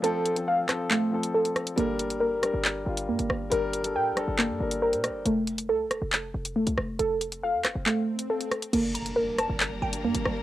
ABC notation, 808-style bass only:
X:1
M:4/4
L:1/16
Q:1/4=138
K:Gm
V:1 name="808-style bass" clef=bass
z16 | G,,,6- G,,, G,,,3 G,,,2 G,, G,,, G,,,2 | G,,,4 B,,3/2 G,,,3/2 G,,,2 G,, G,,,3 B,,3/2 G,,,3/2 | F,,,4 C,,3/2 F,,,3/2 F,,,3 F,,,3 C,, F,,,2 |
F,,,4- F,,, F,, F,,, F,,, z8 | G,,,6- G,,, G,,,3 G,,,2 G,, G,,, G,,,2 |]